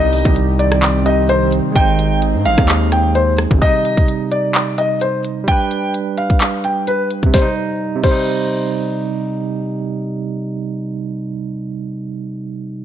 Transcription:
0.00 0.24 C2 loud
0.00 1.02 C3 medium
0.00 3.58 D#3 medium
0.00 1.04 G3 medium
0.00 1.74 C4 medium
0.00 1.06 D#4 medium
0.00 1.72 G4 medium
0.00 0.33 D#5 loud
0.13 open hi-hat medium
0.25 1.61 C2 loud
0.25 kick loud
0.36 closed hi-hat medium
0.59 1.03 D5 medium
0.59 closed hi-hat medium
0.72 cross-stick loud
0.83 clap loud
0.83 closed hi-hat medium
1.04 1.75 C3 medium
1.04 1.76 G3 soft
1.04 1.74 D#4 medium
1.04 1.27 D#5 medium
1.04 closed hi-hat medium
1.29 1.50 C5 medium
1.29 closed hi-hat medium
1.52 closed hi-hat medium
1.72 2.36 G#1 loud
1.72 3.56 G#3 medium
1.72 3.58 D#4 medium
1.72 3.60 G#4 medium
1.72 2.19 G5 loud
1.72 kick loud
1.72 closed hi-hat medium
1.76 3.60 C4 medium
1.76 3.60 C5 medium
1.99 closed hi-hat medium
2.22 closed hi-hat medium
2.34 2.47 G#2 loud
2.45 2.57 G#1 loud
2.45 2.89 F5 medium
2.45 closed hi-hat medium
2.58 3.47 D#2 loud
2.58 kick loud
2.58 cross-stick loud
2.69 clap loud
2.69 closed hi-hat medium
2.92 3.13 G5 medium
2.92 cross-stick medium
2.92 closed hi-hat medium
3.15 3.36 C5 medium
3.15 closed hi-hat medium
3.38 cross-stick loud
3.38 closed hi-hat medium
3.51 3.61 G#1 loud
3.51 kick medium
3.58 5.42 C3 medium
3.58 5.42 G3 medium
3.58 4.05 D#5 loud
3.62 5.46 D#4 medium
3.62 kick loud
3.62 closed hi-hat medium
3.85 closed hi-hat medium
3.97 kick loud
4.08 closed hi-hat medium
4.32 4.75 D5 medium
4.32 closed hi-hat medium
4.55 clap loud
4.55 closed hi-hat medium
4.78 4.99 D#5 medium
4.78 closed hi-hat medium
5.01 5.22 C5 medium
5.01 closed hi-hat medium
5.25 closed hi-hat medium
5.44 7.28 G3 medium
5.44 7.30 D4 medium
5.48 7.32 B4 medium
5.48 5.92 G5 loud
5.48 kick loud
5.48 closed hi-hat medium
5.71 closed hi-hat medium
5.94 closed hi-hat medium
6.18 6.61 F5 medium
6.18 closed hi-hat medium
6.30 kick medium
6.41 clap loud
6.41 closed hi-hat medium
6.64 6.85 G5 medium
6.64 closed hi-hat medium
6.87 7.08 B4 medium
6.87 closed hi-hat medium
7.11 closed hi-hat medium
7.23 7.43 C3 medium
7.23 kick medium
7.34 7.47 G3 medium
7.34 7.47 C5 medium
7.34 kick loud
7.34 snare medium
7.42 7.52 D#4 medium
7.96 11.25 C3 medium
8.04 11.33 G3 medium
8.04 8.69 C5 medium
8.04 kick loud
8.04 crash medium
8.11 11.40 D#4 medium

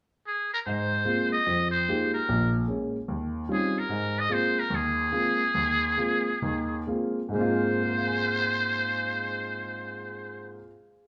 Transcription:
0.27 0.50 G#4 medium
0.54 0.60 A#4 medium
0.66 1.01 G#2 medium
0.66 1.29 C5 medium
1.05 1.33 G#3 soft
1.05 1.33 A#3 soft
1.05 1.33 C4 soft
1.05 1.33 F4 soft
1.32 1.70 D#5 medium
1.46 1.81 F2 medium
1.71 2.10 C5 medium
1.88 2.15 G#3 soft
1.88 2.15 A#3 soft
1.88 2.16 D#4 soft
1.88 2.16 F4 soft
1.88 2.16 G4 medium
2.14 2.51 A#4 medium
2.29 2.63 A#1 medium
2.68 2.95 G#3 soft
2.68 2.95 A#3 soft
2.68 2.96 C#4 soft
3.08 3.43 D#2 medium
3.49 3.76 G3 soft
3.49 3.76 C4 soft
3.49 3.76 C#4 soft
3.49 3.76 D#4 soft
3.49 3.77 F4 soft
3.53 3.80 G#4 medium
3.79 4.21 A#4 medium
3.89 4.24 G#2 medium
4.20 4.34 D#5 medium
4.29 4.57 G#3 soft
4.29 4.57 A#3 soft
4.29 4.57 C4 soft
4.29 4.58 F4 soft
4.29 4.61 C5 medium
4.59 4.77 A#4 medium
4.70 5.06 D#2 medium
4.75 6.89 G#4 medium
5.12 5.40 G#3 soft
5.12 5.40 A#3 soft
5.12 5.41 C4 soft
5.12 5.41 F4 soft
5.55 5.91 D#2 medium
5.97 6.27 G#3 soft
5.97 6.27 A#3 soft
5.97 6.27 C4 soft
5.97 6.27 F4 soft
6.42 6.81 D#2 medium
6.42 6.81 D#3 medium
6.87 7.18 G#3 soft
6.87 7.18 A#3 soft
6.87 7.19 C4 soft
6.87 7.19 F4 soft
7.29 10.54 G#2 medium
7.29 10.57 G#3 medium
7.35 10.60 A#3 medium
7.35 10.63 C4 medium
7.35 10.56 C5 medium
7.41 10.66 F4 medium
7.90 11.07 C5 soft
7.98 11.07 F5 soft
8.07 11.07 G#5 soft
8.17 11.07 C6 soft
8.27 11.07 F6 soft
8.39 11.07 G#6 soft

